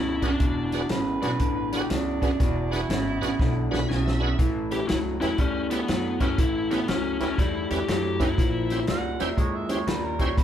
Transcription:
Already playing: C#2 E2 C#3 E4
0.21 E2 C#3 D4 F#4 G#4 B4, kick, snare, closed hi-hat
0.26 D4
0.39 E1 E2 B2, kick, closed hi-hat
0.72 D4 F#4 G#4 B4, snare, closed hi-hat
0.89 G#1 E2 C#3 B4, snare, closed hi-hat
1.21 B1 E2 C#3 D4 F#4 G#4 B4, snare, closed hi-hat
1.39 A1 E2 D3, kick, closed hi-hat
1.72 D4 F#4 G4 G#4 B4, snare, closed hi-hat
1.90 C#2 E2 C#3 D4, snare, closed hi-hat
2.21 E2 C#3 D4 F#4 G#4 B4, kick, snare, closed hi-hat
2.40 E1 E2 B2, kick, snare, closed hi-hat
2.72 D4 E4 F#4 G#4 B4, snare, closed hi-hat
2.89 G#1 E2 C#3, snare, closed hi-hat
3.21 A1 E2 C#3 D4 F#4 G#4 B4, snare, closed hi-hat
3.39 B1 E2 D3, kick, snare
3.71 B1 D4 F#4 G#4 B4 B5, snare
3.88 B1 E2 C#3 G#5, snare
4.05 E5, snare
4.20 E2 C#3 D4 F#4 G#4 B4
4.39 A1 A2 E3, kick, snare, closed hi-hat
4.71 C#4 E4 G4 B4, snare, closed hi-hat
4.88 C#2 A2 F#3 E4, snare, closed hi-hat
5.20 E2 A2 F#3 C#4 E4 G4 B4, snare, closed hi-hat
5.38 D2 A2 G3 C#4, kick, closed hi-hat
5.70 B3 C#4 E4 G4 B4, snare, closed hi-hat
5.88 F#2 A2 F#3, snare, closed hi-hat
6.20 A2 F#3 C#4 E4 G4 B4, kick, snare, closed hi-hat
6.38 A1 A2 E3 E4, kick, closed hi-hat
6.71 B3 C#4 E4 G4 B4, snare, closed hi-hat
6.88 C#2 A2 F#3 C#4, snare, closed hi-hat
7.20 D2 A2 F#3 C#4 E4 G4 B4, snare, closed hi-hat
7.38 E2 A2 G3 E4, kick, snare, closed hi-hat
7.71 E2 C#4 E4 G4 B4, snare, closed hi-hat
7.88 F#2 A2 F#3 G4, snare, closed hi-hat
8.19 A2 F#3 C#4 E4 G4 B4, kick, snare, closed hi-hat
8.38 A#1 A#2 F3, kick, snare, closed hi-hat
8.70 C#4 E4 G4 C5, snare, closed hi-hat
8.87 C#2 A#2 G3 F#5, snare, closed hi-hat
9.20 E2 A#2 G3 C#4 E4 G4 C5 E5, snare, closed hi-hat
9.37 D#2 A#2 G#3 C#5, kick, closed hi-hat
9.56 E5
9.69 C#4 E4 G4 C5 C#5, snare, closed hi-hat
9.87 D#2 A#2 G3 B4, snare, closed hi-hat
10.05 A#4
10.19 A#2 G3 C#4 E4 G4 C5 C#5, kick, snare, closed hi-hat
10.37 E1 E2 B2 B4, kick, closed hi-hat

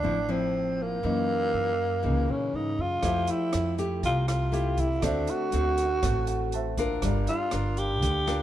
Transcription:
Already playing: D4
0.03 A1 A2 F3 C4 E4
0.28 F3 C4 E4
0.82 A#3
1.03 F#2 E3 A#3 D#4
1.54 F#2
2.03 C#2 C#3 E3 A#3 D#4
2.28 A#2 C#4
2.54 G#2 D#4
2.78 F#2 F4
3.00 F2 F3 A3 E4 G4 A4 C5, kick, cross-stick, closed hi-hat
3.06 E5
3.27 E4, closed hi-hat
3.53 F2, cross-stick, closed hi-hat
3.78 A3 E4 G4, closed hi-hat
4.03 C2 C3 F4, kick, closed hi-hat
4.28 F4, cross-stick, closed hi-hat
4.52 A3 E4 G4, closed hi-hat
4.78 E4, kick, closed hi-hat
4.99 D2 D3 A3 C4 F#4 A4, kick, cross-stick, closed hi-hat
5.03 D4 F#4 C5 E5
5.27 F#4, closed hi-hat
5.52 D2 A3 C4 F#4, closed hi-hat
5.78 closed hi-hat
6.03 A1 A2 A3 C4 F#4, kick, cross-stick, closed hi-hat
6.27 F#5, closed hi-hat
6.52 C5 E5 A5, closed hi-hat
6.78 D4 F4 A#4, kick, closed hi-hat
7.02 G1 G3 A#4 D5, kick, cross-stick, closed hi-hat
7.07 F5
7.27 F4, closed hi-hat
7.51 G1 D4 F4 A#4, cross-stick, closed hi-hat
7.77 G4, closed hi-hat
8.02 D2 D3, kick, closed hi-hat
8.27 D4 F4 A#4, cross-stick, closed hi-hat

